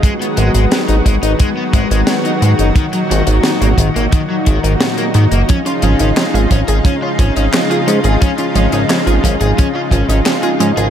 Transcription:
Already playing: G#3
0.03 D#3 F#3 G#3 B3 F#4, kick, closed hi-hat
0.20 B3, closed hi-hat
0.37 G#1 G#3, closed hi-hat
0.55 G#1 G#3, closed hi-hat
0.72 G#3, snare, closed hi-hat
0.88 G#1 D#4, closed hi-hat
1.06 G#1 G#3, kick, closed hi-hat
1.23 G#1 D#4, closed hi-hat
1.39 G#3, kick, closed hi-hat
1.57 B3
1.73 G#1 G#3, kick, closed hi-hat
1.91 G#1 G#3, closed hi-hat
2.07 G#3, snare, closed hi-hat
2.25 D#4, closed hi-hat
2.42 G#2 G#3, closed hi-hat
2.59 F#1 D#4, closed hi-hat
2.76 A#2 D#3 D#4, kick, closed hi-hat
2.93 F#3, closed hi-hat
3.10 G#1 D#3, closed hi-hat
3.27 G#1 D#3, closed hi-hat
3.44 D#3, snare, closed hi-hat
3.61 G#1 A#3, closed hi-hat
3.78 G#1 D#3, kick, closed hi-hat
3.96 G#1 A#3, closed hi-hat
4.12 D#3, kick, closed hi-hat
4.30 F#3
4.46 G#1 D#3, kick, closed hi-hat
4.64 G#1 D#3, closed hi-hat
4.81 D#3, snare, closed hi-hat
4.98 A#3, closed hi-hat
5.14 G#2 D#3, closed hi-hat
5.32 F#1 A#3, closed hi-hat
5.49 C#3 F3 G#3 C#4 F4, kick, closed hi-hat
5.66 C#4 F4, closed hi-hat
5.82 G#1 F3 C#4, closed hi-hat
5.99 G#1 C#4 D#4, closed hi-hat
6.17 F3 C#4, snare, clap, closed hi-hat
6.34 G#1 F4 G#4, closed hi-hat
6.51 G#1 F3 C#4, kick, closed hi-hat
6.68 G#1 G#4, closed hi-hat
6.85 F3 C#4, kick, closed hi-hat
7.02 C#4 F4
7.19 G#1 F3 C#4, kick, closed hi-hat
7.36 G#1 C#4 D#4, closed hi-hat
7.53 F3 C#4, snare, clap, closed hi-hat
7.70 F4 G#4, closed hi-hat
7.87 G#2 F3 C#4, closed hi-hat
8.04 G#1 G#4, closed hi-hat
8.21 F3 C#4, kick, closed hi-hat
8.38 C#4 F4, closed hi-hat
8.55 G#1 F3 C#4, closed hi-hat
8.72 G#1 C#4 D#4, closed hi-hat
8.90 F3 C#4, snare, clap, closed hi-hat
9.07 G#1 F4 G#4, closed hi-hat
9.24 G#1 F3 C#4, kick, closed hi-hat
9.41 G#1 G#4, closed hi-hat
9.58 F3 C#4, kick, closed hi-hat
9.75 C#4 F4
9.91 G#1 F3 C#4, kick, closed hi-hat
10.09 G#1 C#4 D#4, closed hi-hat
10.26 F3 C#4, snare, clap, closed hi-hat
10.43 F4 G#4, closed hi-hat
10.60 G#2 F3 C#4, closed hi-hat
10.77 G#1 G#4, closed hi-hat

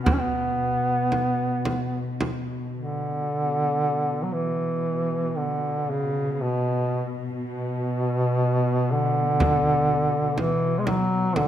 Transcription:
Already playing: B2
0.04 B3, frame drum
0.13 C#4
0.19 B3
1.12 frame drum
1.65 frame drum
2.21 frame drum
2.75 D3
3.25 B2
4.23 F#3
4.33 E3
5.37 D3
5.90 C#3
6.32 C#3
6.42 B2
7.44 B2
8.92 D3
9.40 frame drum
10.38 E3, frame drum
10.79 G#3
10.87 F#3, frame drum
11.36 D3, frame drum

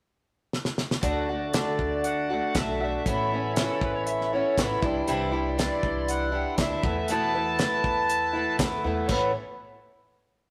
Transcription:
0.53 snare
0.65 snare
0.78 snare
0.91 snare
1.01 D2 D3 A3 D4 F#4 D5 A5, kick, closed hi-hat
1.29 A3 D4 F#4
1.52 D3 A3 D4 F#4 D5, snare, closed hi-hat
1.79 D2, kick
2.04 F#5, closed hi-hat
2.30 A3 D4 F#4
2.55 B1 D3 A3 D4 F#4 E5, kick, snare, closed hi-hat
2.80 A3 D4 F#4 E5
3.05 A1 A2 E3 B3 C#4 E4 A4 C#5 B5, kick, closed hi-hat
3.32 B3 C#4 E4
3.56 E3 B3 C#4 E4 F#4, snare, closed hi-hat
3.70 A4
3.81 A1 B4, kick
3.94 C#5
4.07 E5, closed hi-hat
4.21 snare
4.33 B3 C#4 E4 C#5
4.58 A1 E3 B3 C#4 E4, kick, snare, closed hi-hat
4.82 C2 G3 D4 E4 D5 C6, kick
5.07 C2 C3 E3 G3 D4 E4, closed hi-hat
5.32 G3 D4 E4
5.58 E3 G3 D4 E4 D5, snare, closed hi-hat
5.83 C2, kick
6.08 F#5, closed hi-hat
6.31 G3 D4 E4
6.57 D2 E3 G3 D4 E4 E5, kick, snare, closed hi-hat
6.83 E2 A3 B3 E4 B4 A5, kick
6.87 E3
7.08 E2 B2 E3 A3 B3 E4 A5, closed hi-hat
7.34 E3 A3 B3 E4
7.59 E3 A3 B3 E4, snare, closed hi-hat
7.84 E2, kick
8.09 closed hi-hat
8.33 E3 A3 B3 E4
8.57 E2 E3 A3 B3 E4, kick, snare, closed hi-hat
8.84 E2 E3 A3 B3 E4
9.08 A1 A2 E3 B3 A4 B4 C#5, kick, crash
9.12 C#4 E4

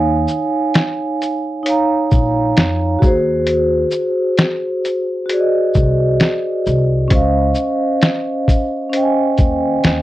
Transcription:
Already playing: D#2 D#4 C#5 F5 G#5
0.28 shaker
0.74 snare, closed hi-hat
1.22 closed hi-hat, shaker
1.63 D#4 C#5, closed hi-hat
1.67 F5 A#5
2.11 A#1, kick, shaker
2.57 F2, snare, closed hi-hat
2.99 D#2 F#4 G#4, kick, shaker
3.06 C5
3.47 closed hi-hat
3.91 shaker
4.37 snare, closed hi-hat
4.85 closed hi-hat, shaker
5.26 F#4 G#4, closed hi-hat
5.33 D5
5.40 D#5
5.74 C2, kick, shaker
6.20 snare, closed hi-hat
6.66 C2, shaker
7.08 C#2 C#4 C5, kick, closed hi-hat
7.13 D#5 F5
7.55 shaker
8.02 snare, closed hi-hat
8.48 kick, closed hi-hat, shaker
8.90 C#4 C5, closed hi-hat
8.95 D#5 G5
9.03 G#5
9.38 D#2, kick, closed hi-hat, shaker
9.84 D#2, snare, closed hi-hat

